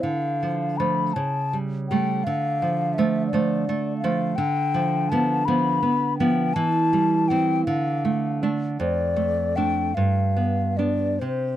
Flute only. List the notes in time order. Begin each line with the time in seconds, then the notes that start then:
0.01 F5
0.77 B5
1.13 A5
1.89 G5
2.24 F5
2.94 E5
3.27 D5
3.98 F5
4.36 G5
5.09 A5
5.45 B5
6.18 G5
6.54 A5
7.28 G5
7.66 F5
8.79 D5
9.56 G5
9.95 F5
10.77 D5
11.19 C5